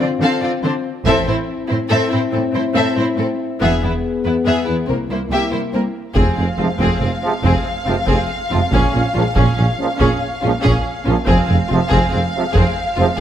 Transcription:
Already playing: C4 F4
0.00 C4 F4
0.20 D3 C4 A4 F5
0.41 D3 C4 F4 D5
0.63 D3 C4 D4 C5
1.05 A1 A2 C4 E4 A4 E5, taiko
1.27 A2 C4 E4 C5
1.67 A2 C4 E4 C5
1.89 A2 C4 A4 E5
2.10 A2 C4 E4 C5
2.32 A2 C4 A4
2.53 A2 C4 E4 C5
2.74 A2 C4 A4 E5
2.95 A2 C4 C5
2.99 E4
3.17 A2 C4 A4
3.60 E1 E2 B3 G#4 E5
3.81 E2 B3 E4 B4
4.24 E2 B3 E4 B4
4.46 E2 B3 G#4 E5
4.66 E2 B3 E4 B4
4.86 C2 A#3 C4 E4 A#4
5.09 C2 A#3 E4 C5
5.30 C2 A#3 G4 E5
5.51 C2 A#3 E4 C5
5.73 C2 A#3 C4 A#4
6.14 F1 F2 C4 G#4 F5, taiko
6.36 F1 F2 C4 G#4
6.57 F1 F2 C3 F3 G#3 C4 F4
6.79 F1 F2 C4 G#4, taiko
7.00 F1 F2 C4 G#4
7.22 C3 F3 G#3 C4
7.43 F1 F2 C4 G#4, taiko
7.85 F1 F2 C3 F3 G#3 C4 F4
8.06 F1 F2 C4 G#4, taiko
8.50 F1 F2 C3 F3 G#3 C4 F4
8.72 A#1 A#2 C#4 G#4, taiko
8.92 A#1 A#2 C#4 G#4
9.14 A#1 A#2 F3 G#3 C#4 F4
9.34 A#1 A#2 C#4 G#4, taiko
9.57 A#1 A#2 C#4 G#4
9.77 A#2 F3 G#3 C#4
9.99 A#1 A#2 C#4 G#4, taiko
10.41 A#1 A#2 F3 G#3 C#4 F4
10.62 A#1 A#2 C#4 G#4, taiko
11.04 A#1 A#2 F3 G#3 C#4 F4
11.08 A#2
11.26 F1 F2 C4 G#4 F5, taiko
11.48 F1 F2 C4 G#4
11.68 F1 F2 G#3 C4 F4
11.72 C3 F3
11.88 F1 F2 C4 G#4, taiko
12.10 F1 C4 G#4
12.14 F2
12.36 C3 F3 G#3 C4
12.52 F1 F2 C4 G#4, taiko
12.96 F1 F2 C3 F3 G#3 C4 F4
13.17 G#4

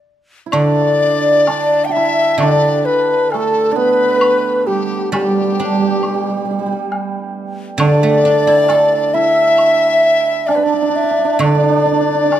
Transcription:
0.46 E4
0.51 D3 D4 D5, high woodblock
1.47 D4, high woodblock, low woodblock
1.85 G5
1.89 G4 E5
1.96 E4
2.38 D3 D5, high woodblock
2.42 D4
2.85 B4
3.30 A3 A4, low woodblock
3.72 D4 D5
3.76 B3 B4
4.21 high woodblock
4.66 G3 G4
5.12 G3 G4, high woodblock, low woodblock
5.22 G3
5.28 G3
5.39 G3
5.44 G3
5.53 G3
5.59 G3 D4
5.67 G3
5.75 G3
5.82 G3
5.89 G3
5.97 G3
6.02 G3, high woodblock
6.07 G3
6.14 G3
6.23 G3
6.29 G3
6.37 G3
6.45 G3
6.51 G3
6.59 G3
6.66 G3
6.72 G3
6.92 low woodblock
7.78 D3 D4 D5, high woodblock
8.03 A3
8.25 D4
8.47 E4
8.69 A4, high woodblock, low woodblock
9.14 E4 E5
9.58 high woodblock
10.47 D4 D5, low woodblock
10.51 D5
10.56 D4 B4
10.64 D4 D5
10.74 D4
10.82 D4
10.90 D4
10.95 D4 E5
11.04 D4
11.11 D4
11.19 D4
11.24 D4
11.35 D3 E5
11.40 D4 D5, high woodblock
11.45 D4
11.55 D4
11.63 D4
11.69 D4
11.77 D4
11.85 D4
11.92 D4
12.01 D4
12.09 D4
12.14 D4
12.26 D4
12.30 D4, high woodblock, low woodblock

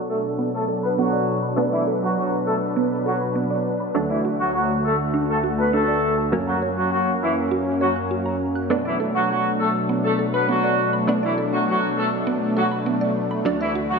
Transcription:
Already playing: B2 F#3 A3 B3 D4 A4
0.09 A3 A4
0.39 B3
0.54 A3 A4
0.68 A4
0.83 B3 B4 B5
0.98 F#3 B3 F#4
1.13 D5
1.42 B5
1.56 A3 B3 D4 B4
1.72 E3 E4 D5
1.87 A4
2.02 F#3 F#4
2.17 F#3 F#4
2.46 A3 A4
2.76 B3
3.06 F#3 F#4 A4
3.21 B5
3.35 B3
3.50 D5
3.80 B5
3.94 D2 D3 F#3 A3 D4 F#4
4.10 E3 E4 D5
4.25 F#4
4.40 F#3 F#4
4.55 F#3 F#4
4.84 A3 A4
5.14 D4
5.29 A3 A4
5.43 F#4
5.58 B3 B4 A5
5.73 A3 D4 A4
5.88 D5
6.18 A5
6.32 F#2 F#3 A#3 C#4 F#4
6.47 F#3 F#4 A#5
6.62 C#5
6.77 F#3 F#4
6.92 F#3 F#4
7.22 E3 E4
7.51 F#4
7.81 F#3 F#4 C#5
7.96 F#6
8.11 F#4
8.26 A#5
8.55 F#6
8.70 B2 A3 B3 D4
8.85 E3 E4 D5
9.00 A4
9.15 F#3 F#4
9.30 F#3 F#4
9.59 A3 A4
9.89 B3
10.04 A3 A4
10.19 A4
10.34 B3 B4 B5
10.48 F#3 B3 F#4
10.63 D5
10.93 B5
11.07 A3 B3 D4
11.23 E3 E4 D5
11.38 A4
11.52 F#3 F#4
11.67 F#3 F#4
11.97 A3 A4
12.27 B3
12.56 F#3 F#4 A4
12.71 B5
12.86 B3
13.01 D5
13.31 B5
13.45 D2 D3 F#3 A3 D4 F#4
13.61 E3 E4 D5
13.75 F#4
13.90 F#3 F#4

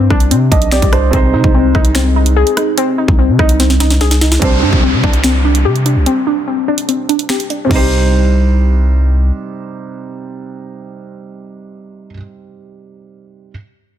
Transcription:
Already playing: G3 C4 D4 G4 C5
0.10 C2 D4, kick, cross-stick
0.20 closed hi-hat
0.31 C3 C4, closed hi-hat
0.52 B1 D4 D#5, kick, closed hi-hat
0.62 closed hi-hat
0.71 G4 D5, finger snap, snare
0.82 C2, kick, closed hi-hat
0.93 D4 C5, cross-stick, closed hi-hat
1.11 C2 C3 G#3 C4 D#4, kick, closed hi-hat
1.16 C5
1.34 C3 D#4
1.44 C2, kick
1.54 C4
1.75 C2 D#4, kick, cross-stick
1.85 closed hi-hat
1.95 C4, finger snap, snare, closed hi-hat
2.16 D#4
2.26 closed hi-hat
2.36 G#4
2.47 closed hi-hat
2.57 D#4, cross-stick, closed hi-hat
2.78 C4, closed hi-hat
2.98 D#4
3.08 C2, kick
3.19 C4
3.29 C3
3.39 C2 D#4, kick, cross-stick
3.49 closed hi-hat
3.60 C4, snare, closed hi-hat
3.70 snare
3.80 D#4, snare, closed hi-hat
3.90 snare, closed hi-hat
4.01 G#4, snare
4.11 snare, closed hi-hat
4.21 D#4, snare
4.32 snare
4.40 C2 C3 G3 C4 D4, kick, closed hi-hat, downlifter
4.44 C5
4.62 G2 D4
4.73 C2, kick
4.83 C4
4.93 C3
5.04 C2 D4, kick
5.13 closed hi-hat
5.24 C4, finger snap, snare, closed hi-hat
5.45 D4
5.55 closed hi-hat
5.65 C3 G4
5.76 closed hi-hat
5.86 D4, closed hi-hat
5.96 C2
6.06 C4, closed hi-hat
6.27 D4
6.47 C4
6.68 D4
6.78 closed hi-hat
6.89 C4, closed hi-hat
7.09 D4, closed hi-hat
7.19 closed hi-hat
7.29 G4, finger snap, snare
7.40 closed hi-hat
7.50 D4, closed hi-hat
7.65 C3 C4
7.69 C2 G3 D#4, kick, crash
7.75 G4 C5

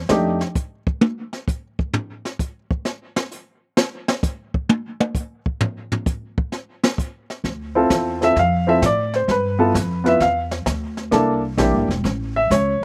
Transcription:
0.09 F2 A3 D4 D#4 G4, snare
0.41 snare
0.55 kick, hi-hat pedal
0.87 kick
1.01 high tom
1.33 snare
1.48 kick, hi-hat pedal
1.79 kick
1.93 floor tom
2.25 snare
2.39 kick, hi-hat pedal
2.71 kick
2.85 snare
3.16 snare
3.31 hi-hat pedal
3.77 snare
4.08 snare
4.23 kick, hi-hat pedal
4.54 kick
4.69 high tom
5.00 high tom
5.15 kick, hi-hat pedal
5.46 kick
5.61 floor tom
5.92 floor tom
6.06 kick, hi-hat pedal
6.38 kick
6.52 snare
6.83 snare
6.98 kick, hi-hat pedal
7.30 snare
7.44 D2, brush sweep, kick, snare
7.75 C4 E4 F4 A4
7.90 E2, kick, snare, hi-hat pedal
8.21 C4 E4 F4 A4 E5, snare
8.36 F2 F5, brush sweep, kick, snare
8.67 C4 E4 F4 A4 E5
8.82 A2 D5, kick, snare, hi-hat pedal
9.14 C5, snare
9.28 G2 B4, brush sweep, kick, snare
9.59 B3 E4 F4 A4
9.74 F2, kick, snare, hi-hat pedal
10.04 B3 E4 F4 B4, snare
10.08 E5
10.20 E2 F5, brush sweep, kick, snare
10.51 snare
10.66 D2, kick, snare, hi-hat pedal
10.97 snare
11.11 C2 A#3 D4 E4 A4, brush sweep, kick, snare
11.57 A#1 A#3 D4 E4 G4, kick, snare, hi-hat pedal
11.73 G1
11.88 E1, snare
12.04 A1, brush sweep, kick, snare
12.36 E5
12.50 C#2 C#5, kick, snare, hi-hat pedal
12.81 muted upright bass stroke

